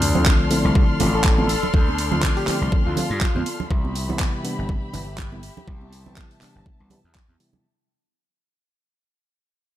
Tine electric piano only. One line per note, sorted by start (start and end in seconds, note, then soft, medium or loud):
0.15 0.48 D3 medium
0.15 0.48 F3 medium
0.15 0.48 A3 medium
0.15 0.48 C4 medium
0.15 0.48 F4 loud
0.50 0.97 D3 medium
0.50 0.97 F3 medium
0.50 0.97 A3 medium
0.50 0.98 C4 medium
0.50 0.98 E4 medium
0.99 1.08 D3 medium
0.99 1.08 F3 medium
0.99 1.09 A3 medium
0.99 1.09 C4 medium
0.99 1.09 F4 medium
1.38 1.45 D3 medium
1.38 1.45 F3 medium
1.38 1.45 A3 medium
1.38 1.45 C4 medium
1.38 1.45 F4 medium
2.12 2.45 D3 medium
2.12 2.45 F3 medium
2.12 2.45 A3 medium
2.12 2.45 C4 medium
2.12 2.45 F4 loud
2.47 2.94 D3 medium
2.47 2.94 F3 medium
2.47 2.94 A3 medium
2.47 2.94 C4 medium
2.47 2.94 E4 medium
2.96 3.05 D3 medium
2.96 3.05 F3 medium
2.96 3.05 A3 medium
2.96 3.06 C4 medium
2.96 3.06 F4 medium
3.35 3.42 D3 medium
3.35 3.42 F3 medium
3.35 3.42 A3 medium
3.35 3.42 C4 medium
3.35 3.42 F4 medium
4.08 4.41 C3 medium
4.08 4.41 E3 medium
4.08 4.42 G3 medium
4.08 4.42 B3 medium
4.08 4.42 E4 medium
4.44 4.91 C3 medium
4.44 4.91 E3 medium
4.44 4.91 G3 medium
4.44 4.91 B3 medium
4.44 4.91 D4 medium
4.93 5.02 C3 medium
4.93 5.02 E3 medium
4.93 5.02 G3 medium
4.93 5.02 B3 medium
4.93 5.03 E4 medium
5.32 5.39 C3 medium
5.32 5.39 E3 medium
5.32 5.39 G3 medium
5.32 5.39 B3 medium
5.32 5.39 E4 medium
6.06 6.38 C3 medium
6.06 6.39 E3 medium
6.06 6.39 G3 medium
6.06 6.39 B3 medium
6.06 6.39 E4 medium
6.41 6.87 C3 medium
6.41 6.88 E3 medium
6.41 6.88 G3 medium
6.41 6.88 B3 medium
6.41 6.88 D4 medium
6.90 6.99 C3 medium
6.90 6.99 E3 medium
6.90 6.99 G3 medium
6.90 6.99 B3 medium
6.90 6.99 E4 loud
7.39 7.63 C3 medium
7.39 7.63 E3 medium
7.39 7.63 G3 medium
7.39 7.63 B3 medium
7.39 7.63 E4 medium